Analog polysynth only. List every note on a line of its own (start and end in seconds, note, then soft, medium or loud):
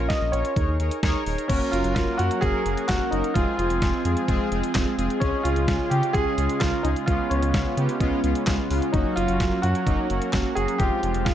0.10 0.31 C#4 medium
0.10 0.31 F4 medium
0.10 0.31 A#4 medium
0.10 0.31 D#5 medium
0.33 0.54 C#4 medium
0.33 0.54 F4 medium
0.33 0.54 A#4 medium
0.33 0.54 C#5 medium
0.57 0.77 D#4 medium
0.57 0.77 G#4 medium
0.57 0.77 A#4 medium
0.57 0.77 C#5 medium
0.80 1.01 D#4 medium
0.80 1.01 G#4 medium
0.80 1.01 A#4 medium
0.80 1.01 C#5 medium
1.03 1.24 D#4 loud
1.03 1.24 G#4 loud
1.03 1.24 A#4 loud
1.03 1.24 C#5 loud
1.26 1.47 D#4 medium
1.26 1.47 G#4 medium
1.26 1.47 A#4 medium
1.26 1.47 C#5 loud
1.49 1.70 A#3 medium
1.49 1.70 C#4 medium
1.49 1.70 F#4 medium
1.49 1.70 A#4 loud
1.73 1.94 A#3 medium
1.73 1.94 C#4 medium
1.73 1.94 F#4 medium
1.73 1.94 A#4 medium
1.96 2.17 A#3 medium
1.96 2.17 C#4 medium
1.96 2.17 F#4 medium
1.96 2.17 A#4 medium
2.19 2.40 A#3 medium
2.19 2.40 C#4 medium
2.19 2.40 F#4 medium
2.19 2.40 A#4 medium
2.42 2.63 A#3 loud
2.42 2.63 C#4 medium
2.42 2.63 F#4 medium
2.42 2.63 A#4 loud
2.66 2.87 A#3 medium
2.66 2.87 C#4 medium
2.66 2.87 F#4 medium
2.66 2.87 G#4 medium
2.89 3.10 A#3 medium
2.89 3.10 C#4 medium
2.89 3.10 F#4 medium
2.89 3.10 A#4 medium
3.12 3.33 A#3 medium
3.12 3.33 C#4 medium
3.12 3.33 F#4 medium
3.12 3.33 A#4 medium
3.35 3.56 G#3 medium
3.35 3.56 C4 medium
3.35 3.56 F4 medium
3.35 3.56 G#4 loud
3.59 3.80 G#3 medium
3.59 3.80 C4 medium
3.59 3.80 F4 medium
3.59 3.80 G#4 medium
3.82 4.03 G#3 medium
3.82 4.03 C4 medium
3.82 4.03 F4 medium
3.82 4.03 G#4 medium
4.05 4.26 G#3 medium
4.05 4.26 C4 medium
4.05 4.26 F4 medium
4.05 4.26 G#4 medium
4.28 4.49 G#3 loud
4.28 4.49 C4 loud
4.28 4.49 F4 loud
4.28 4.49 G#4 loud
4.52 4.73 G#3 medium
4.52 4.73 C4 medium
4.52 4.73 F4 medium
4.52 4.73 G#4 loud
4.75 4.96 G#3 medium
4.75 4.96 C4 medium
4.75 4.96 F4 medium
4.75 4.96 G#4 loud
4.98 5.19 G#3 medium
4.98 5.19 C4 medium
4.98 5.19 F4 medium
4.98 5.19 G#4 loud
5.21 5.42 G#3 loud
5.21 5.42 C#4 medium
5.21 5.42 F4 medium
5.21 5.42 G#4 loud
5.45 5.66 G#3 medium
5.45 5.66 C#4 medium
5.45 5.66 F4 medium
5.45 5.66 G#4 medium
5.68 5.89 G#3 medium
5.68 5.89 C#4 medium
5.68 5.89 F4 medium
5.68 5.89 G#4 medium
5.91 6.12 G#3 medium
5.91 6.12 C#4 medium
5.91 6.12 F4 medium
5.91 6.12 G4 medium
6.15 6.35 G#3 loud
6.15 6.35 C#4 medium
6.15 6.35 F4 medium
6.15 6.35 G#4 loud
6.38 6.59 G#3 medium
6.38 6.59 C#4 medium
6.38 6.59 F4 medium
6.38 6.59 G#4 medium
6.61 6.82 G#3 medium
6.61 6.82 C#4 medium
6.61 6.82 F4 medium
6.61 6.82 A#4 medium
6.85 7.05 G#3 medium
6.85 7.05 C#4 medium
6.85 7.05 F4 medium
6.85 7.05 G#4 medium
7.08 7.29 G#3 medium
7.08 7.29 B3 medium
7.08 7.28 C#4 medium
7.08 7.28 F4 loud
7.31 7.52 G#3 medium
7.31 7.52 B3 medium
7.31 7.52 C#4 medium
7.31 7.52 F4 medium
7.54 7.75 G#3 medium
7.54 7.75 B3 medium
7.54 7.75 C#4 medium
7.54 7.75 F4 medium
7.77 7.98 G#3 medium
7.77 7.98 B3 medium
7.77 7.98 C#4 medium
7.77 7.98 G4 medium
8.01 8.21 G#3 loud
8.01 8.22 B3 loud
8.01 8.21 C#4 loud
8.01 8.21 F4 loud
8.24 8.45 G#3 medium
8.24 8.45 B3 medium
8.24 8.45 C#4 medium
8.24 8.45 F4 loud
8.47 8.68 G#3 medium
8.47 8.68 B3 medium
8.47 8.68 C#4 medium
8.47 8.68 F4 loud
8.70 8.91 G#3 medium
8.70 8.91 B3 medium
8.70 8.91 C#4 medium
8.70 8.91 F4 loud
8.94 9.15 F#3 loud
8.94 9.15 A#3 medium
8.94 9.15 C#4 medium
8.94 9.15 F#4 loud
9.17 9.38 F#3 medium
9.17 9.38 A#3 medium
9.17 9.38 C#4 medium
9.17 9.38 F#4 medium
9.40 9.61 F#3 medium
9.40 9.61 A#3 medium
9.40 9.61 C#4 medium
9.40 9.61 F#4 medium
9.63 9.84 F#3 medium
9.63 9.84 A#3 medium
9.63 9.84 C#4 medium
9.63 9.84 F#4 medium
9.86 10.07 F#3 loud
9.86 10.07 A#3 medium
9.86 10.07 C#4 medium
9.86 10.07 D#4 loud
10.10 10.31 F#3 medium
10.10 10.31 A#3 medium
10.10 10.31 C#4 medium
10.10 10.31 F#4 medium
10.33 10.54 F#3 medium
10.33 10.54 A#3 medium
10.33 10.54 C#4 medium
10.33 10.54 F#4 loud
10.56 10.77 F#3 medium
10.56 10.77 A#3 medium
10.56 10.77 C#4 medium
10.56 10.77 F#4 medium
10.80 11.01 F3 loud
10.80 11.01 G#3 medium
10.80 11.01 C4 medium
10.80 11.01 F4 loud
11.03 11.24 F3 medium
11.03 11.24 G#3 medium
11.03 11.24 C4 medium
11.03 11.24 F4 medium
11.26 11.34 F3 medium
11.26 11.34 G#3 medium
11.26 11.34 C4 medium
11.26 11.34 G#4 medium